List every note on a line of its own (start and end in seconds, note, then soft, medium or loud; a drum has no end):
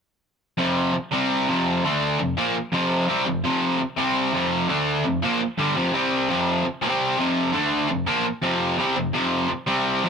0.57 0.93 F2 medium
0.57 0.94 C3 medium
0.57 0.94 F3 loud
0.95 muted overdriven electric guitar stroke medium
1.12 1.47 C3 medium
1.12 1.48 G3 medium
1.12 1.48 C4 medium
1.48 1.83 F2 medium
1.48 1.83 C3 medium
1.48 1.84 F3 loud
1.84 2.19 D3 loud
1.84 2.19 A3 loud
1.84 2.20 D4 medium
2.19 2.33 F2 medium
2.19 2.34 C3 medium
2.37 2.54 A#2 medium
2.37 2.55 F3 loud
2.37 2.55 A#3 loud
2.56 muted overdriven electric guitar stroke medium
2.72 3.07 F2 medium
2.72 3.07 C3 medium
2.72 3.08 F3 medium
3.08 3.25 C3 medium
3.08 3.26 G3 medium
3.08 3.26 C4 medium
3.27 3.41 F2 medium
3.27 3.41 C3 medium
3.44 3.78 F2 medium
3.44 3.80 C3 loud
3.44 3.80 F3 loud
3.79 muted overdriven electric guitar stroke medium
3.97 4.32 C3 medium
3.97 4.33 G3 loud
3.97 4.33 C4 loud
4.32 4.68 F2 medium
4.32 4.68 C3 medium
4.32 4.69 F3 medium
4.68 5.04 D3 loud
4.68 5.04 A3 loud
4.68 5.04 D4 medium
5.04 5.19 F2 medium
5.04 5.19 C3 medium
5.22 5.39 A#2 medium
5.22 5.40 F3 medium
5.22 5.40 A#3 loud
5.41 muted overdriven electric guitar stroke medium
5.58 5.75 G2 medium
5.58 5.76 D3 loud
5.58 5.76 G3 loud
5.76 5.93 F2 medium
5.76 5.91 C3 medium
5.76 5.93 F3 medium
5.93 6.28 C3 medium
5.93 6.29 G3 medium
5.93 6.29 C4 loud
6.29 6.64 F2 medium
6.29 6.64 C3 medium
6.29 6.65 F3 loud
6.65 muted overdriven electric guitar stroke medium
6.82 7.17 C3 medium
6.82 7.18 G3 loud
6.82 7.18 C4 loud
7.18 7.53 F2 medium
7.18 7.52 C3 medium
7.18 7.53 F3 medium
7.53 7.88 D3 medium
7.53 7.89 A3 medium
7.53 7.89 D4 loud
7.90 8.04 F2 medium
7.90 8.04 C3 medium
8.07 8.24 A#2 medium
8.07 8.25 F3 loud
8.07 8.25 A#3 loud
8.25 muted overdriven electric guitar stroke medium
8.42 8.78 F2 medium
8.42 8.77 C3 medium
8.42 8.78 F3 loud
8.78 8.95 C3 loud
8.78 8.96 G3 loud
8.78 8.96 C4 medium
8.96 9.10 F2 medium
8.96 9.11 C3 medium
9.13 9.49 F2 medium
9.13 9.49 C3 loud
9.13 9.50 F3 medium
9.50 muted overdriven electric guitar stroke medium
9.67 10.02 C3 medium
9.67 10.03 G3 loud
9.67 10.03 C4 loud
10.03 10.09 F2 medium
10.03 10.09 C3 medium
10.03 10.09 F3 medium